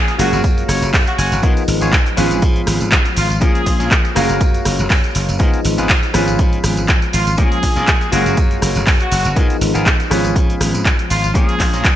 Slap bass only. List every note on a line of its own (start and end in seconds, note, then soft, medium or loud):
0.19 0.29 F#1 medium
0.33 0.41 F#1 medium
0.44 0.63 F#2 medium
0.69 0.79 F#1 loud
0.82 0.90 F#1 loud
0.93 1.03 F#2 medium
1.18 1.28 F#1 medium
1.32 1.40 F#1 medium
1.43 1.53 G#2 loud
1.68 1.78 G#1 loud
1.81 1.90 G#1 loud
1.93 2.03 G#2 medium
2.18 2.27 G#1 loud
2.31 2.39 G#1 loud
2.42 2.61 G#2 medium
2.67 2.77 G#1 loud
2.81 2.89 G#1 loud
2.92 3.02 G#2 medium
3.17 3.27 G#1 medium
3.30 3.38 G#1 medium
3.42 3.51 A#2 loud
3.66 3.76 A#1 loud
3.80 3.88 A#1 loud
3.91 4.01 A#2 medium
4.16 4.26 F#1 medium
4.30 4.38 F#1 medium
4.41 4.59 F#2 medium
4.66 4.75 F#1 loud
4.79 4.87 F#1 medium
4.90 5.00 F#2 medium
5.15 5.25 F#1 medium
5.29 5.37 F#1 medium
5.40 5.50 G#2 loud
5.65 5.75 G#1 loud
5.79 5.86 G#1 loud
5.90 5.99 G#2 medium
6.14 6.24 G#1 medium
6.28 6.36 G#1 medium
6.39 6.58 G#2 medium
6.64 6.74 G#1 loud
6.78 6.86 G#1 loud
6.89 6.99 G#2 medium
7.14 7.23 G#1 medium
7.27 7.35 G#1 medium
7.38 7.48 A#2 medium
7.63 7.73 A#1 loud
7.76 7.85 A#1 loud
7.88 7.98 A#2 medium
8.13 8.22 F#1 medium
8.26 8.34 F#1 medium
8.37 8.56 F#2 medium
8.62 8.72 F#1 loud
8.76 8.84 F#1 medium
8.87 8.97 F#2 medium
9.12 9.22 F#1 medium
9.25 9.33 F#1 medium
9.37 9.46 G#2 loud
9.61 9.71 G#1 loud
9.75 9.83 G#1 loud
9.86 9.96 G#2 medium
10.11 10.21 G#1 medium
10.24 10.33 G#1 loud
10.36 10.54 G#2 medium
10.61 10.70 G#1 loud
10.74 10.82 G#1 loud
10.85 10.95 G#2 medium
11.11 11.20 G#1 medium
11.24 11.32 G#1 medium
11.35 11.45 A#2 loud
11.60 11.70 A#1 loud
11.74 11.82 A#1 loud
11.85 11.94 A#2 medium